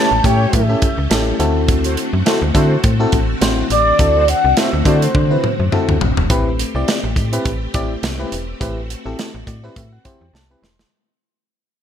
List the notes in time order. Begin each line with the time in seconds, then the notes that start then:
Already playing: A3 C#4 G4 A5
0.11 A1
0.24 A2 A3 C#4 E4 G4 C#5 G5, kick, closed hi-hat
0.53 A2 E5, kick, closed hi-hat
0.69 C#4 E4 G4 A4
0.82 kick, closed hi-hat
0.98 C#2
1.10 A1 C#4 E4 G4 A4, snare, closed hi-hat
1.39 D2 D3 C4 E4 F#4 A4, closed hi-hat
1.68 kick, closed hi-hat
1.84 A3 F#4 C5, closed hi-hat
1.97 closed hi-hat
2.13 F#2
2.26 A3 C4 E4 F#4 A4 C5, snare, closed hi-hat
2.42 D2
2.54 D3 A3 C4 E4 F#4 A4 C5, kick, closed hi-hat
2.84 A2, kick, closed hi-hat
3.00 C4 E4 F#4 A4
3.12 A1, kick, closed hi-hat
3.41 A1 C4 E4 F#4 C5, snare, closed hi-hat
3.70 A1 D5, closed hi-hat
3.99 D2 C4 E4 F#4 A4, kick, closed hi-hat
4.16 A3 F#4 C5
4.28 F#5, closed hi-hat
4.45 C2
4.57 A3 C4 E4 F#4 A4 C5 E5, snare, closed hi-hat
4.73 D2
4.85 D3 A3 C4 E4 F#4 A4 C5 D5, kick, closed hi-hat
5.02 C5, closed hi-hat
5.15 D3, kick, high tom
5.30 C4 E4 F#4 B4
5.44 mid tom
5.60 F#2
5.72 C4 E4 F#4 A4, mid tom
5.89 D2, mid tom
6.01 A1, floor tom
6.17 E1, floor tom
6.30 A1 A3 C4 E4 G4 B4, kick, closed hi-hat
6.59 closed hi-hat
6.75 C2 C4 E4 G4 D5
6.88 snare, closed hi-hat
7.04 A1
7.16 A2, kick, closed hi-hat
7.32 C4 E4 G4 B4, closed hi-hat
7.45 A1, kick, closed hi-hat
7.74 A1 C4 E4 G4 D5, kick, closed hi-hat
8.03 C2, snare, closed hi-hat
8.19 C4 E4 G4 B4
8.32 E1, closed hi-hat
8.60 A1 C4 E4 F#4 G4 B4, kick, closed hi-hat
8.90 closed hi-hat
9.05 A1 C4 E4 G4 A4
9.19 snare, closed hi-hat
9.35 A1
9.47 A2 D5, kick, closed hi-hat
9.63 C4 E4 G4 B4
9.76 A2 E5, kick, closed hi-hat
9.93 F#5
10.05 C4 E4 G4 C5, kick, closed hi-hat
10.21 E2 G5
10.33 C2 A5, snare
10.50 C4 E4 G4 B4
10.62 E1 C6, snare
10.79 snare